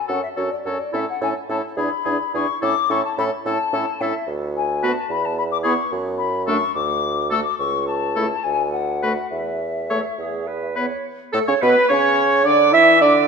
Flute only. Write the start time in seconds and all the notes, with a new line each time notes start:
0.08 F#5
0.22 E5
0.36 C#5
0.50 D5
0.64 C#5
0.78 D5
0.93 E5
1.09 F#5
1.23 G#5
1.50 A5
1.78 B5
2.35 C#6
2.62 D6
2.90 C#6
3.04 A5
3.18 B5
3.45 A5
4.01 E5
4.56 G#5
4.84 A5
5.11 B5
5.25 A5
5.38 B5
5.51 D6
5.64 C#6
6.18 B5
6.46 C#6
6.74 D6
7.30 E6
7.43 D6
7.58 C#6
7.87 A5
8.43 G#5
8.72 F#5
9.30 E5
11.33 A4
11.47 C#5
11.61 B4
11.89 C#5
12.45 D5
12.73 E5
13.00 D5